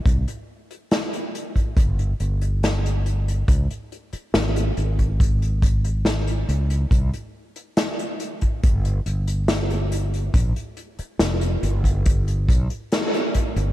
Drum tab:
HH |xx-xxxxxxxxxxxxx|xxxxxxxxxxxxxxxx|xx-xxxxxxxxxxxxx|xxxxxxxxxxxxxxxx|
SD |----o-------o---|----o-------o---|----o-------o---|----o-------o---|
BD |o------oo-------|o------oo-o-----|o------oo-------|o------oo-o---o-|